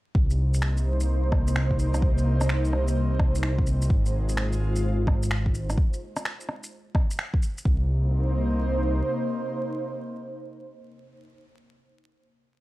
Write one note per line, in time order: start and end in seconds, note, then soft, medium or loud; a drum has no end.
0.15 2.02 C2 medium
0.15 3.90 C3 medium
0.15 kick loud
0.23 5.78 D#4 medium
0.30 shaker soft
0.35 4.67 A#3 medium
0.35 5.78 C5 medium
0.54 shaker medium
0.62 finger snap loud
0.77 shaker soft
1.00 shaker medium
1.32 kick loud
1.32 cross-stick medium
1.48 shaker medium
1.56 finger snap loud
1.71 kick medium
1.79 shaker soft
1.94 cross-stick medium
1.94 shaker medium
2.02 3.89 C2 medium
2.02 kick loud
2.18 shaker soft
2.41 cross-stick medium
2.41 shaker medium
2.49 finger snap loud
2.65 shaker soft
2.73 cross-stick soft
2.88 shaker medium
3.20 kick loud
3.20 cross-stick medium
3.35 shaker medium
3.43 finger snap loud
3.59 kick loud
3.67 shaker soft
3.82 shaker medium
3.89 5.77 G#1 medium
3.89 5.77 G#3 medium
3.89 kick loud
4.06 shaker soft
4.19 5.77 F4 medium
4.29 shaker medium
4.37 finger snap loud
4.53 shaker soft
4.76 shaker medium
5.07 kick loud
5.07 cross-stick medium
5.23 shaker medium
5.31 finger snap loud
5.46 kick medium
5.55 shaker soft
5.70 cross-stick soft
5.70 shaker medium
5.78 kick loud
5.93 shaker soft
6.17 cross-stick medium
6.17 shaker medium
6.25 finger snap loud
6.41 shaker soft
6.49 cross-stick soft
6.64 shaker medium
6.95 kick loud
6.95 cross-stick medium
7.11 shaker medium
7.19 finger snap loud
7.34 kick loud
7.43 shaker soft
7.58 shaker medium
7.65 9.02 C2 medium
7.65 11.12 C3 medium
7.65 kick loud
7.74 11.20 A#3 medium
7.83 11.29 D#4 medium
7.88 11.33 C5 medium